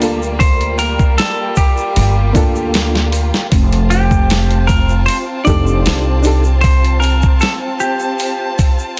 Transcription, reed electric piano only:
0.00 0.17 A#3 medium
0.00 0.18 D4 medium
0.00 0.19 F4 medium
0.00 0.20 A4 medium
2.33 3.07 A#3 medium
2.33 3.08 D4 medium
2.33 3.09 F4 medium
2.33 3.09 A4 loud
5.44 6.19 D4 medium
5.44 6.20 D#4 medium
5.44 6.20 G4 medium
5.49 6.21 A4 loud
6.22 6.41 D4 medium
6.22 6.42 D#4 medium
6.22 6.42 G4 medium
6.27 6.43 A4 medium

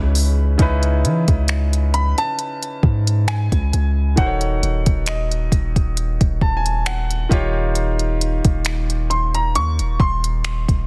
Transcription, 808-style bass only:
0.00 0.57 C#2 loud
0.59 1.06 C#2 loud
1.05 1.27 E3 medium
1.28 2.14 C#2 loud
2.83 3.49 G#2 medium
3.52 3.72 C#2 loud
3.74 4.16 C#2 loud
4.18 4.61 D#1 loud
4.63 4.86 D#1 medium
4.87 5.49 D#1 loud
5.52 6.18 D#1 loud
6.21 7.27 D#1 loud
7.31 8.41 D#1 loud
8.45 9.57 D#1 loud
9.55 9.81 D#2 medium
9.80 9.99 D#1 loud
10.00 10.66 D#1 loud
10.69 10.87 D#1 loud

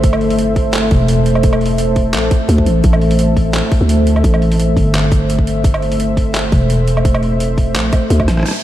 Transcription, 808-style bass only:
0.00 0.90 G1 medium
0.91 2.15 E1 medium
2.14 2.30 A#1 medium
2.49 2.65 D2 loud
2.66 2.83 A1 medium
2.84 3.62 A1 loud
3.81 4.23 D2 medium
4.24 4.76 A1 loud
4.77 6.51 G1 medium
6.52 7.77 E1 medium
7.75 7.91 A#1 medium
8.10 8.27 D2 loud
8.28 8.44 A1 medium

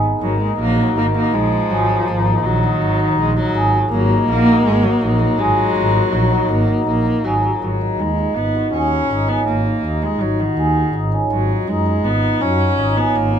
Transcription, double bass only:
0.00 0.17 G#1 medium
0.22 0.55 G#1 medium
0.59 0.92 A#1 medium
0.96 1.29 G#1 medium
1.34 1.66 A#1 medium
1.71 2.03 G#1 medium
2.08 2.40 G#1 medium
2.45 2.77 A#1 medium
2.82 3.14 G#1 medium
3.18 3.51 A#1 medium
3.55 3.88 G#1 medium
3.91 4.24 G#1 loud
4.29 4.61 A#1 medium
4.65 4.97 G#1 medium
5.02 5.34 A#1 medium
5.39 5.71 G#1 medium
5.76 6.08 G#1 medium
6.12 6.45 A#1 medium
6.50 6.82 G#1 medium
6.87 7.20 A#1 medium
7.25 7.58 G#1 medium
7.63 7.96 G#1 medium
8.00 8.33 D#2 medium
8.37 8.70 G#1 medium
8.74 9.07 D#2 medium
9.11 9.43 G#1 medium
9.48 9.80 G#1 medium
9.85 10.17 D#2 medium
10.21 10.54 G#1 medium
10.58 10.90 D#2 medium
10.95 11.27 G#1 medium
11.31 11.64 G#1 medium
11.68 12.01 F#2 medium
12.05 12.38 G#1 medium
12.42 12.74 F#2 medium
12.79 13.12 G#1 medium
13.17 13.39 G#1 medium

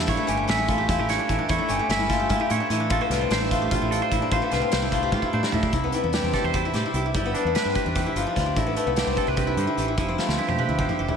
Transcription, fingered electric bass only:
0.08 0.17 A1 medium
0.28 0.47 G1 medium
0.48 0.86 A1 medium
0.89 0.98 E2 medium
0.99 1.17 A1 medium
1.29 1.39 A1 medium
1.49 1.59 E2 medium
1.69 1.79 G1 medium
1.89 2.31 G1 medium
2.30 2.39 A2 medium
2.50 2.60 A2 medium
2.70 2.89 A2 medium
2.90 3.00 A1 medium
3.10 3.29 C2 medium
3.31 3.68 A1 medium
3.72 3.81 A1 medium
3.81 4.00 A1 medium
4.12 4.21 A1 medium
4.31 4.41 A1 medium
4.52 4.62 C2 medium
4.73 5.14 C2 medium
5.12 5.22 A2 medium
5.33 5.42 A2 medium
5.54 5.72 A2 medium
5.73 5.92 C2 medium
6.04 6.22 E2 medium
6.23 6.33 E2 medium
6.44 6.72 E2 medium
6.74 6.83 A2 medium
6.94 7.16 C2 medium
7.15 7.33 G1 medium
7.45 7.54 E2 medium
7.65 7.74 G2 medium
7.86 8.04 E2 medium
8.15 8.25 G1 medium
8.37 8.55 D2 medium
8.56 8.75 A1 medium
8.86 9.05 C2 medium
9.07 9.16 C2 medium
9.27 9.55 C2 medium
9.57 9.66 G2 medium
9.77 9.99 A1 medium
9.98 10.16 F1 medium
10.28 10.37 D2 medium
10.48 10.58 F2 medium
10.68 10.87 D2 medium
10.99 11.08 F1 medium

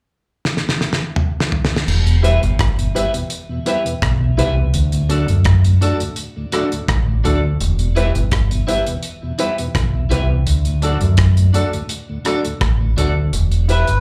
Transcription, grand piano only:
2.23 2.38 E4 medium
2.23 2.38 G4 medium
2.23 2.39 B4 medium
2.95 3.10 E4 medium
2.95 3.10 G4 medium
2.95 3.10 B4 loud
3.66 3.81 E4 medium
3.66 3.81 G4 medium
3.66 3.82 B4 medium
4.38 4.53 E4 medium
4.38 4.53 G4 medium
4.38 4.53 B4 loud
5.09 5.24 D4 medium
5.09 5.25 F#4 medium
5.09 5.25 A4 medium
5.81 5.96 D4 medium
5.81 5.96 F#4 medium
5.81 5.96 A4 medium
6.52 6.67 D4 medium
6.52 6.68 F#4 medium
6.52 6.68 A4 medium
7.24 7.39 D4 medium
7.24 7.39 F#4 medium
7.24 7.40 A4 loud
7.96 8.11 E4 medium
7.96 8.11 G4 medium
7.96 8.11 B4 loud
8.67 8.82 E4 medium
8.67 8.82 G4 medium
8.67 8.83 B4 medium
9.39 9.54 E4 medium
9.39 9.54 G4 medium
9.39 9.54 B4 loud
10.11 10.25 E4 medium
10.11 10.26 G4 medium
10.11 10.26 B4 medium
10.82 10.97 D4 medium
10.82 10.97 F#4 medium
10.82 10.97 A4 loud
11.54 11.68 D4 medium
11.54 11.69 F#4 medium
11.54 11.69 A4 medium
12.25 12.40 D4 medium
12.25 12.40 F#4 medium
12.25 12.41 A4 medium
12.97 13.12 D4 medium
12.97 13.12 F#4 medium
12.97 13.12 A4 medium
13.68 13.83 E4 medium
13.68 13.84 G4 medium
13.68 13.84 B4 medium

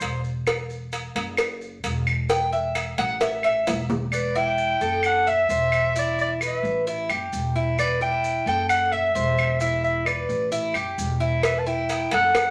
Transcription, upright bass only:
0.01 1.09 E1 medium
1.15 1.80 F#1 loud
1.84 2.92 E1 loud
2.98 3.63 A1 loud
3.67 4.75 E1 loud
4.81 5.45 F#1 medium
5.49 6.57 E1 medium
6.63 7.06 A1 loud
7.09 7.31 F#1 medium
7.33 8.40 E1 loud
8.46 9.11 F#1 loud
9.15 10.23 E1 loud
10.29 10.72 A1 loud
10.75 10.96 F#1 medium
10.98 12.06 E1 medium
12.12 12.50 F#1 loud

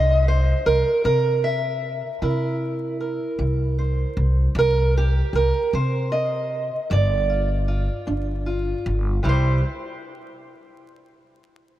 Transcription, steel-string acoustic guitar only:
0.00 0.58 C3 medium
0.00 0.27 D#5 loud
0.28 0.67 C5 medium
0.66 1.04 A#4 loud
1.04 1.75 G3 medium
1.04 1.44 A#4 loud
1.44 3.00 E5 medium
2.22 2.92 C3 medium
2.22 4.52 E4 medium
2.22 2.99 A#4 medium
3.00 4.52 A#4 medium
3.39 4.09 G3 medium
3.78 4.52 C5 medium
4.56 5.27 C3 medium
4.56 4.97 A#4 loud
4.97 5.35 G4 loud
5.35 5.74 A#4 loud
5.73 6.43 G3 medium
5.73 6.11 C5 medium
6.12 6.90 D#5 medium
6.90 7.61 G3 medium
6.90 9.26 D5 medium
7.29 7.67 F4 soft
7.68 8.45 F4 medium
8.07 8.78 D4 medium
8.46 9.20 F4 medium
9.23 9.59 C3 medium
9.23 9.59 G3 medium
9.23 9.60 E4 medium
9.23 9.60 G4 medium
9.29 9.63 C5 medium

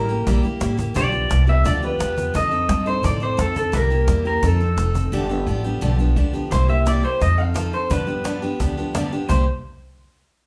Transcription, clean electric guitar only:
0.00 0.39 A#4 medium
0.97 1.45 D5 loud
1.49 1.66 E5 loud
1.66 1.84 D5 loud
1.84 2.36 B4 loud
2.36 2.87 D#5 loud
2.87 3.03 C5 medium
3.05 3.23 D5 loud
3.23 3.39 C5 medium
3.40 3.56 A4 medium
3.57 3.74 A4 medium
3.74 4.26 A#4 loud
4.27 4.45 A#4 medium
4.45 5.83 A4 medium
6.52 6.69 C5 medium
6.70 6.87 E5 medium
6.88 7.05 D5 medium
7.04 7.20 C5 medium
7.22 7.38 D#5 loud
7.38 7.74 F5 loud
7.74 7.90 C5 medium
7.90 8.94 B4 medium
9.29 9.45 C5 medium

